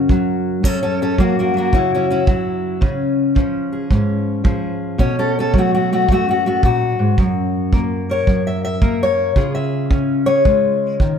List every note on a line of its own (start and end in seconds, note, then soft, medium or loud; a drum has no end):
0.00 0.62 F#2 medium
0.00 0.62 A#3 soft
0.00 0.64 C#4 medium
0.00 0.65 F#4 medium
0.09 0.62 F#3 medium
0.09 kick medium
0.63 2.82 F#2 medium
0.63 0.81 C#4 medium
0.63 0.81 A4 medium
0.63 kick medium
0.83 1.00 C#4 medium
0.83 1.00 A4 medium
1.02 1.19 C#4 medium
1.02 1.20 A4 medium
1.18 1.53 F#3 medium
1.18 1.37 A#3 medium
1.18 1.37 F#4 medium
1.18 kick medium
1.39 1.56 A#3 medium
1.39 1.56 F#4 medium
1.54 2.26 F#3 soft
1.54 1.74 A#3 medium
1.58 2.25 F#4 medium
1.72 2.27 C#3 medium
1.72 1.79 C#4 medium
1.72 1.92 E4 medium
1.72 kick medium
1.95 2.04 C#4 medium
1.95 2.10 E4 medium
2.10 2.19 C#4 medium
2.10 2.83 E4 medium
2.26 2.80 F#3 medium
2.26 2.81 F#4 medium
2.26 kick medium
2.81 3.36 C#3 medium
2.81 3.35 C#4 soft
2.81 kick medium
3.35 4.43 F3 medium
3.35 3.90 C#4 soft
3.35 kick medium
3.73 4.44 G#4 soft
3.90 4.97 G#2 medium
3.90 4.98 C#4 soft
3.90 kick medium
4.44 4.97 F3 medium
4.44 5.01 G#4 medium
4.44 kick medium
4.98 6.08 B2 medium
4.98 5.18 C#4 medium
4.98 5.18 A4 loud
4.98 kick medium
5.19 5.37 C#4 medium
5.19 5.37 A4 medium
5.39 5.56 C#4 medium
5.39 5.56 A4 medium
5.54 7.16 F#3 medium
5.54 kick medium
5.58 5.73 A3 medium
5.58 5.73 F#4 medium
5.74 5.92 A3 medium
5.74 5.92 F#4 medium
5.93 6.10 A3 medium
5.93 6.10 F#4 medium
6.07 6.63 F#2 medium
6.07 kick medium
6.12 6.28 A3 medium
6.12 6.29 F#4 medium
6.29 6.45 A3 medium
6.29 6.46 F#4 medium
6.46 6.64 A3 medium
6.46 6.64 F#4 medium
6.63 6.99 A#2 medium
6.63 8.10 F#4 medium
6.63 kick medium
6.99 7.18 G#2 medium
7.18 8.25 F#2 medium
7.18 kick medium
7.73 8.81 A#3 medium
7.73 kick medium
8.10 8.80 A#4 soft
8.10 8.46 C#5 medium
8.27 9.35 F#2 medium
8.27 kick medium
8.47 8.63 E5 medium
8.65 9.00 E5 medium
8.82 9.34 A#3 medium
8.82 9.34 A#4 medium
8.82 kick medium
9.03 9.54 C#5 medium
9.36 11.19 C#3 medium
9.36 10.45 F4 medium
9.36 10.25 G#4 medium
9.36 kick medium
9.55 10.26 E5 medium
9.90 11.19 C#4 medium
9.90 kick medium
10.26 11.19 G#4 soft
10.26 11.19 C#5 loud
10.45 10.99 G#3 medium
10.45 11.19 F4 soft
10.45 kick medium
11.00 11.19 D#3 medium
11.00 kick medium